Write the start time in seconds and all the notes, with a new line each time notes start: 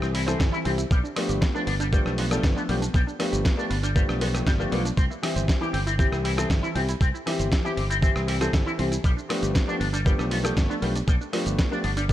Already playing: E3 G3 C4 E4 G4
0.01 C2 C4 E4, cross-stick, shaker
0.13 E4 G4, open hi-hat
0.26 E3 G3 C4 E4 A4 C5, cross-stick, closed hi-hat, shaker
0.39 G1 E5, kick, snare, closed hi-hat, shaker
0.52 E4, shaker
0.65 C2 E3 G3 C4 E4 G4, open hi-hat
0.78 E4, closed hi-hat, shaker
0.91 B1 G3 B3, kick, closed hi-hat, shaker
1.03 D4, shaker
1.16 F3 A3 B3 D4 F4 G4, cross-stick, open hi-hat
1.29 G1 G4, closed hi-hat, shaker
1.41 B4, kick, snare, closed hi-hat, shaker
1.54 F3 A3 B3 D4 G4, shaker
1.67 G1 B3 D4, open hi-hat
1.80 G3 D4, closed hi-hat, shaker
1.92 F3 G3 A3 B3 D4 G4, kick, closed hi-hat, shaker
2.06 B1 G3 D4, cross-stick, shaker
2.18 B3 F4, open hi-hat
2.31 F3 G3 A3 B3 D4 G4 A4, cross-stick, closed hi-hat, shaker
2.43 G1 B4, kick, snare, closed hi-hat, shaker
2.57 B3 D4, shaker
2.69 B1 F3 G3 A3 B3 D4 G4, open hi-hat
2.82 D4, closed hi-hat, shaker
2.94 B1 G3 B3, kick, closed hi-hat, shaker
3.07 D4, shaker
3.19 F3 A3 B3 D4 F4 G4, cross-stick, open hi-hat
3.32 G1 G4, closed hi-hat, shaker
3.45 B4, kick, snare, closed hi-hat, shaker
3.57 F3 A3 B3 D4 G4, shaker
3.70 G1 B3 D4, open hi-hat
3.83 G3 D4, closed hi-hat, shaker
3.95 F3 G3 A3 B3 D4 G4, kick, closed hi-hat, shaker
4.09 B1 G3 D4, cross-stick, shaker
4.21 F3 A3 B3 D4 F4 G4, open hi-hat
4.34 G2 G4, cross-stick, closed hi-hat, shaker
4.46 G1 G3 B4, kick, snare, closed hi-hat, shaker
4.59 F3 G3 A3 B3 D4 G4, shaker
4.72 B1 D3 F3 A3 B3 D4 F4, open hi-hat
4.85 D4, closed hi-hat, shaker
4.97 C2 C4, kick, closed hi-hat, shaker
5.10 E4, shaker
5.23 E3 G3 C4 E4 G4, cross-stick, open hi-hat
5.36 G1 C5, closed hi-hat, shaker
5.48 E5, kick, snare, closed hi-hat, shaker
5.61 E3 G3 C4 E4 G4, shaker
5.73 G1 C4 G4, open hi-hat
5.87 C4 E4, closed hi-hat, shaker
5.99 E3 G3 C4 E4 G4, kick, closed hi-hat, shaker
6.12 C2 C4 E4, cross-stick, shaker
6.24 E4 G4, open hi-hat
6.37 E3 G3 C4 E4 A4 C5, cross-stick, closed hi-hat, shaker
6.50 G1 E5, kick, snare, closed hi-hat, shaker
6.63 E4, shaker
6.75 C2 E3 G3 C4 E4 G4, open hi-hat
6.89 E4, closed hi-hat, shaker
7.01 C2 C4, kick, closed hi-hat, shaker
7.14 E4, shaker
7.26 E3 G3 C4 E4 G4, cross-stick, open hi-hat
7.39 G1 C5, closed hi-hat, shaker
7.52 E5, kick, snare, closed hi-hat, shaker
7.64 E3 G3 C4 E4 G4, shaker
7.77 G1 C4 G4, open hi-hat
7.90 C4 E4, closed hi-hat, shaker
8.02 E3 G3 C4 E4 G4, kick, closed hi-hat, shaker
8.15 C2 C4 E4, cross-stick, shaker
8.28 E4 G4, open hi-hat
8.41 E3 G3 C4 E4 A4 C5, cross-stick, closed hi-hat, shaker
8.53 G1 E5, kick, snare, closed hi-hat, shaker
8.66 E4, shaker
8.78 C2 E3 G3 C4 E4 G4, open hi-hat
8.92 E4, closed hi-hat, shaker
9.04 B1 G3 B3, kick, closed hi-hat, shaker
9.17 D4, shaker
9.29 F3 A3 B3 D4 F4 G4, cross-stick, open hi-hat
9.42 G1 G4, closed hi-hat, shaker
9.55 B4, kick, snare, closed hi-hat, shaker
9.67 F3 A3 B3 D4 G4, shaker
9.80 G1 B3 D4, open hi-hat
9.93 G3 D4, closed hi-hat, shaker
10.06 F3 G3 A3 B3 D4 G4, kick, closed hi-hat, shaker
10.19 B1 G3 D4, cross-stick, shaker
10.31 B3 F4, open hi-hat
10.44 F3 G3 A3 B3 D4 G4 A4, cross-stick, closed hi-hat, shaker
10.57 G1 B4, kick, snare, closed hi-hat, shaker
10.69 B3 D4, shaker
10.81 B1 F3 G3 A3 B3 D4 G4, open hi-hat
10.96 D4, closed hi-hat, shaker
11.07 B1 G3 B3, kick, closed hi-hat, shaker
11.21 D4, shaker
11.32 F3 A3 B3 D4 F4 G4, cross-stick, open hi-hat
11.46 G1 G4, closed hi-hat, shaker
11.59 B4, kick, snare, closed hi-hat, shaker
11.71 F3 A3 B3 D4 G4, shaker
11.84 G1 B3 D4, open hi-hat
11.97 G3 D4, closed hi-hat, shaker
12.09 F3 G3 A3 B3 D4, kick, closed hi-hat